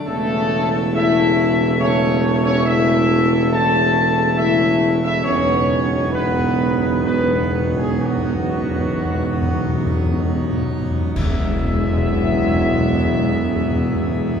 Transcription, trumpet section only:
\new Staff \with { instrumentName = "Trumpet section" } { \time 3/4 \key e \major \tempo 4 = 65 a'4 e''4 cis''8. cis''16 | e''4 a''4 e''8. e''16 | cis''4 b'4 b'8. gis'16 | fis'2~ fis'8 r8 |
e''2. | }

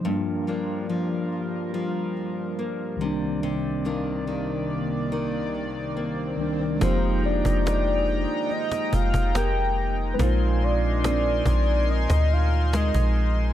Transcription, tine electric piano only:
\new Staff \with { instrumentName = "Tine electric piano" } { \time 4/4 \key f \dorian \tempo 4 = 71 <f g bes d'>2.~ <f g bes d'>8 <c, ees g bes d'>8~ | <c, ees g bes d'>2.~ <c, ees g bes d'>8 <c, ees g bes d'>8 | <aes bes g'>1 | <aes c' ees' f'>1 | }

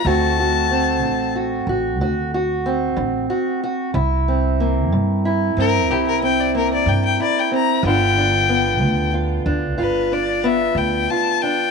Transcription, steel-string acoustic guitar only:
\new Staff \with { instrumentName = "Steel-string acoustic guitar" } { \time 12/8 \key d \dorian \tempo 4. = 62 << { <a c' fis'>8 fis'8 c'4 fis'8 fis'8 fis'8 fis'8 c'4 fis'8 fis'8 | e'8 c'8 bes4 e'8 c'8 e'8 c'8 bes4 e'8 c'8 | <d b d' f'>8 d'8 b4 f'8 d'8 f'8 d'8 b4 f'8 d'8 | } \\ { d4 r8 d4 r8 d4 r8 d4 r8 | c4 r8 c4 r8 c4 r8 c4 r8 | g,4 r8 g,4 r8 g,4 r8 g,4 r8 | } >> }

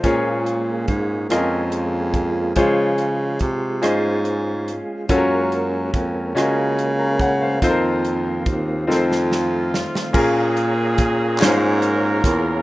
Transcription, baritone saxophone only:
\new Staff \with { instrumentName = "Baritone saxophone" } { \clef bass \time 6/8 \key bes \minor \tempo 4. = 48 bes,4 aes,8 f,4. | des4 c8 aes,4 r8 | ges,4 f,8 des4. | f,4 ees,8 f,4 r8 |
bes,4. aes,4 e,8 | }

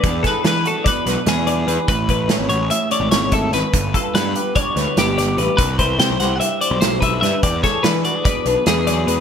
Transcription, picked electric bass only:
\new Staff \with { instrumentName = "Picked electric bass" } { \clef bass \time 9/8 \key e \mixolydian \tempo 4. = 97 e,8 r8 e8 r4 b,,16 r16 e,4 e,16 r16 | a,,4 a,16 gis,,16 a,,8 r8. gis,,16 gis,,4 gis,,16 r16 | g,,8 r8 g,8 r4 d,16 r16 g,,4 a,,16 r16 | c,4 c16 b,,16 c,8 r8. b,,16 b,,4 g,16 r16 |
e,8 r8 e8 r4 b,,16 r16 e,4 e,16 r16 | }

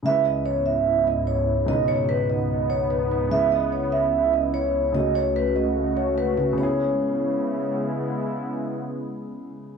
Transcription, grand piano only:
\new Staff \with { instrumentName = "Grand piano" } { \time 4/4 \key cis \minor \tempo 4 = 147 <cis gis e' b'>1 | <cis, b, gis dis' b'>1 | <cis gis e' b'>1 | <cis a fis' a'>2.~ <cis a fis' a'>8 <cis a fis' a'>8 |
<cis b e' gis'>1~ | <cis b e' gis'>1 | }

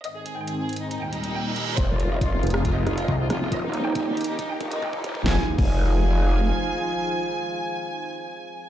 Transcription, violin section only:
\new Staff \with { instrumentName = "Violin section" } { \time 4/4 \key f \minor \tempo 4 = 138 ees''16 aes'16 aes'16 g''16 aes'16 aes'16 r16 ees'16 ees'16 g''16 ees'16 ees'16 g''16 ees'16 ees'16 ees'16 | c''16 f'16 f'16 ees''16 f'16 f'16 r16 f'16 f'16 ees''16 f'16 f'16 ees''16 f'16 f'16 f'16 | ees''16 ees'16 ees'16 g''16 ees'16 ees'16 r16 ees'16 ees'16 g''16 ees'16 ees'16 g''16 ees'16 ees'16 ees'16 | aes''16 r8 aes''2.~ aes''16~ |
aes''1 | }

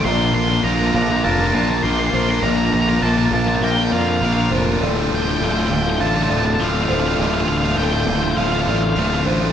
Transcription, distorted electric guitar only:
\new Staff \with { instrumentName = "Distorted electric guitar" } { \time 4/4 \key d \minor \tempo 4 = 101 <bes, f bes d' f' bes'>8. <bes d' f' bes'>16 <bes, f bes d' f' bes'>8 <bes d' f' bes'>8 <bes d' f' bes'>16 <bes d' f' bes'>8. <bes, f bes d' f' bes'>8 <bes d' f' bes'>16 <bes d' f' bes'>16 | <bes, f bes d' f' bes'>8. <bes d' f' bes'>16 <bes, f bes d' f' bes'>8 <bes d' f' bes'>8 <bes d' f' bes'>16 <bes d' f' bes'>8. <bes, f bes d' f' bes'>8 <bes d' f' bes'>16 <bes d' f' bes'>16 | <d, a, d a f'>8. <d a f'>16 <d, a, d a f'>8 <a, d a f'>8 <a, d a f'>16 <d a f'>8. <d, a, d a f'>8 <a, d a f'>16 <d a f'>16 | <d, a, d a f'>8. <d a f'>16 <d, a, d a f'>8 <a, d a f'>8 <a, d a f'>16 <d a f'>8. <d, a, d a f'>8 <a, d a f'>16 <d a f'>16 | }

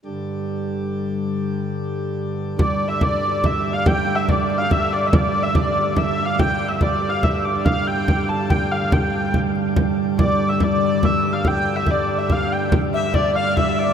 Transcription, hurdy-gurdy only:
\new Staff \with { instrumentName = "Hurdy-gurdy" } { \time 3/4 \key d \minor \tempo 4 = 142 r2. | r2. | \tuplet 3/2 { d''4 e''8 } d''4 \tuplet 3/2 { e''4 f''8 } | \tuplet 3/2 { g''4 e''8 d''4 f''8 e''8. d''8 e''16 } |
\tuplet 3/2 { d''4 e''8 } d''4 \tuplet 3/2 { e''4 f''8 } | \tuplet 3/2 { g''4 e''8 d''4 f''8 } e''8 d''8 | f''8 g''4 a''8 g''8 f''8 | g''4 r2 |
\tuplet 3/2 { d''4 e''8 } d''4 \tuplet 3/2 { e''4 f''8 } | \tuplet 3/2 { g''4 e''8 d''4 e''8 } f''8 g''8 | r8 e''8 d''8 f''8 e''8 d''8 | }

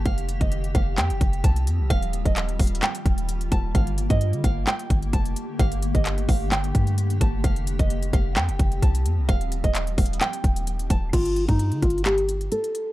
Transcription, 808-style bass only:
\new Staff \with { instrumentName = "808-style bass" } { \clef bass \time 4/4 \key g \minor \tempo 4 = 130 r8. f,,8. f,,8 f,16 f,,16 f,,8 c,8 f,16 c,16 | ees,,8. ees,,8. ees,,8 r8 ees,,4 ees,,8 | g,,8. g,8 d16 g,,8 r8 g,,8 f,,8 r8 | g,,8. g,,8. g,,4 g,4 g,,8 |
f,,8. f,,8. f,,8 f,16 f,,16 f,,8 c,8 f,16 c,16 | ees,,8. ees,,8. ees,,8 r8 ees,,4 ees,,8 | g,,8. g,8 d16 g,,4. r4 | }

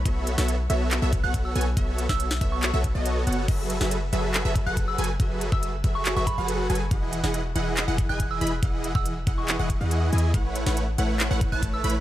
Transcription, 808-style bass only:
\new Staff \with { instrumentName = "808-style bass" } { \clef bass \time 4/4 \key fis \dorian \tempo 4 = 140 b,,8. b,,8. b,,8. b,,8 b,,8. b,,8 | b,,8. b,,8. b,,8. b,,8 b,,8. fis,,8 | fis,,8. fis,,8. fis,,8. fis,,8 fis,,8. fis,,8 | fis,,8. fis,,8. fis,,8. fis,,8 fis,,8. fis,,8 |
e,,8. e,,8. e,,8. e,,8 e,,8. e,,8 | e,,8. e,,8. e,,8. e,,8 e,8. e,8 | a,,8. a,,8. a,,8. a,,8 a,,8. a,,8 | }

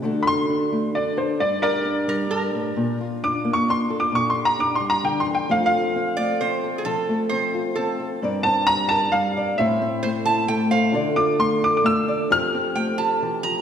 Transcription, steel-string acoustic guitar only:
\new Staff \with { instrumentName = "Steel-string acoustic guitar" } { \time 3/4 \key g \dorian \tempo 4 = 132 << { <a d' fis' a'>8 fis'8 d'4 d'8 a'8 | r8 g'8 d'2 | r8 f'8 d'4 d'8 a'8 | r8 g'8 d'2 |
<a c' f' a'>8 f'8 c'4 c'8 a'8 | a'4 c'8 f'8 c'8 f'8 | <c' bes' d''>8 c'4 bes'4 d''8 | <c' e' c''>8 c'4 e'4 c''8 |
<f' a' d''>8 f'4 a'4 d''8 | <c' g' a'>8 c'4 g'4. | } \\ { d4. a4. | g,4. g8 g,8 a,8 | bes,4. bes4. | bes,4. g8 d8 e8 |
f4. a4. | f8 a2~ a8 | g,4 g4 g4 | a,4 a4 a4 |
d4 a4 a4 | f4 a4 e8 f8 | } >> }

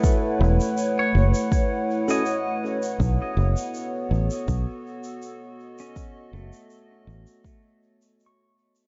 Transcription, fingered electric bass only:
\new Staff \with { instrumentName = "Fingered electric bass" } { \clef bass \time 4/4 \key b \mixolydian \tempo 4 = 81 r8 e,,8 r8 fis,,8 r2 | b,,8 fis,,8 r8 a,,8 b,,8 r4. | r8 fis,,8 r8 a,,8 r2 | }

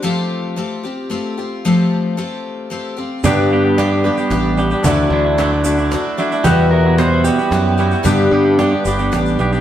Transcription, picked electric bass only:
\new Staff \with { instrumentName = "Picked electric bass" } { \clef bass \time 3/4 \key g \major \tempo 4 = 112 r2. | r2. | g,2 a,,4 | d,8 d,2 r8 |
e,2 fis,4 | g,8 g,4 g,,8 a,,8 b,,8 | }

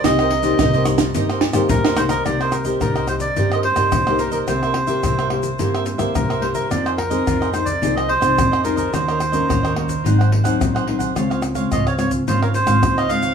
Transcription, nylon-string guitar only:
\new Staff \with { instrumentName = "Nylon-string guitar" } { \time 4/4 \key c \minor \tempo 4 = 108 << { <bes ees' g'>8 r16 <bes ees' g'>8. <bes ees' g'>8 <bes ees' g'>8 r16 <bes ees' g'>8. <bes ees' g'>16 r16 | <bes ees' g'>8. <bes ees' g'>8. <bes ees' g'>16 r16 <bes ees' g'>8 r16 <bes ees' g'>8 <bes ees' g'>8. | <bes e' g'>8 r16 <bes e' g'>8. <bes e' g'>16 r16 <bes e' g'>8. <bes e' g'>8. <bes e' g'>8 | <c' ees' aes'>8 r16 <c' ees' aes'>8. <c' ees' aes'>16 r16 <c' ees' aes'>8 r16 <c' ees' aes'>8. <c' ees' aes'>8 |
<bes des' ges'>8 r16 <bes des' ges'>8. <bes des' ges'>16 r16 <ges c' ees'>8. <ges c' ees'>8. <ges c' ees'>8 | <aes c' f'>8. <aes c' f'>8. <aes c' f'>8 <aes c' f'>8 r16 <aes c' f'>8. <aes c' f'>8 | } \\ { c4 g,4 c4 g,4 | c4 g,4 c4 g,4 | c4 g,4 c4 g,4 | f4 c4 f4 c4 |
ees4 bes,4 aes,4 ees4 | des4 aes,4 des4 aes,4 | } >> }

